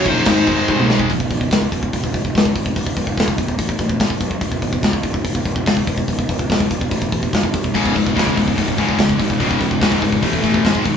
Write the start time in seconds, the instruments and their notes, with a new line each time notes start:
Already playing: distorted electric guitar F#2 C#3 F#3
0.04 picked electric bass A#1, distorted electric guitar F#2 C#3 F#3, lead electric guitar D#4 C5, kick, crash
0.25 picked electric bass G#1, distorted electric guitar G#2 D#3 G#3, kick, snare, crash
0.47 picked electric bass G#1, distorted electric guitar G#2 D#3 G#3, kick, crash
0.68 picked electric bass C2, distorted electric guitar G#2 D#3 G#3, kick
0.80 mid tom
0.90 distorted electric guitar G#2 D#3 G#3, snare
0.99 kick
1.10 picked electric bass C#1, kick, open hi-hat
1.20 kick
1.30 picked electric bass C#1, kick, open hi-hat
1.41 kick
1.51 picked electric bass C#2, kick, snare, open hi-hat
1.61 kick
1.72 picked electric bass C#1, kick, open hi-hat
1.83 kick
1.93 picked electric bass C#1, kick, open hi-hat
2.04 kick
2.14 picked electric bass C#1, kick, open hi-hat
2.25 kick
2.35 picked electric bass C#2, kick, snare, open hi-hat
2.45 kick
2.55 picked electric bass G#1, kick, open hi-hat
2.66 kick
2.76 picked electric bass C#1, kick, open hi-hat
2.86 kick
2.97 picked electric bass C#1, kick, open hi-hat
3.07 kick
3.18 picked electric bass C#2, kick, snare, open hi-hat
3.28 kick
3.38 picked electric bass C#1, kick, open hi-hat
3.48 kick
3.58 picked electric bass A1, kick, open hi-hat
3.69 kick
3.79 picked electric bass A1, kick, open hi-hat
3.89 kick
4.00 picked electric bass G#1, kick, snare, open hi-hat
4.10 kick
4.21 picked electric bass B1, kick, open hi-hat
4.31 kick
4.41 picked electric bass C#1, kick, open hi-hat
4.52 kick
4.62 picked electric bass C#1, kick, open hi-hat
4.73 kick
4.83 picked electric bass C#2, kick, snare, open hi-hat
4.93 kick
5.03 picked electric bass C#1, kick, open hi-hat
5.14 kick
5.25 picked electric bass C#1, kick, open hi-hat
5.35 kick
5.45 picked electric bass C#1, kick, open hi-hat
5.56 kick
5.66 picked electric bass C#2, kick, snare, open hi-hat
5.77 kick
5.87 picked electric bass G#1, kick, open hi-hat
5.98 kick
6.08 picked electric bass C#1, kick, open hi-hat
6.19 kick
6.29 picked electric bass C#1, kick, open hi-hat
6.39 kick
6.50 picked electric bass C#2, kick, snare, open hi-hat
6.60 kick
6.71 picked electric bass C#1, kick, open hi-hat
6.81 kick
6.91 picked electric bass A1, kick, open hi-hat
7.02 kick
7.12 picked electric bass A1, kick, open hi-hat
7.23 kick
7.33 picked electric bass G1, kick, snare, open hi-hat
7.43 kick
7.54 picked electric bass C2, kick, open hi-hat
7.64 kick
7.74 picked electric bass C#1, distorted electric guitar C#2 G#2 C#3, kick, crash
7.86 kick
7.95 picked electric bass C#1, distorted electric guitar C#2 G#2, kick, open hi-hat
8.07 kick
8.15 distorted electric guitar C#2 G#2 C#3, picked electric bass C#2, kick, open hi-hat
8.19 snare
8.27 kick
8.35 picked electric bass C#1, distorted electric guitar C#2 G#2 C#3, kick, open hi-hat
8.48 kick
8.56 picked electric bass C#1, distorted electric guitar C#2 G#2 C#3, kick, open hi-hat
8.68 kick
8.78 picked electric bass C#1, distorted electric guitar C#2 G#2 C#3, kick, open hi-hat
8.89 kick
8.98 distorted electric guitar C#2 G#2 C#3, picked electric bass C#2, kick, snare, open hi-hat
9.09 kick
9.19 picked electric bass G#1, distorted electric guitar C#2 G#2 C#3, kick, open hi-hat
9.30 kick
9.40 picked electric bass C#1, distorted electric guitar C#2 G#2 C#3, kick, open hi-hat
9.51 kick
9.61 picked electric bass C#1, distorted electric guitar C#2 G#2, kick, open hi-hat
9.71 kick
9.81 picked electric bass C#2, distorted electric guitar C#2 G#2 C#3, kick, snare, open hi-hat
9.92 kick
10.02 picked electric bass G#1, distorted electric guitar C#2 G#2 C#3, kick, open hi-hat
10.12 kick
10.22 picked electric bass A1, distorted electric guitar A2 E3 A3, kick, open hi-hat
10.33 kick
10.43 picked electric bass A1, distorted electric guitar A2 E3 A3, kick, open hi-hat
10.54 kick
10.64 picked electric bass G#1, distorted electric guitar G#2 D#3 G#3, kick, snare, open hi-hat
10.75 kick
10.85 picked electric bass B1, distorted electric guitar G#2 D#3 G#3, kick, open hi-hat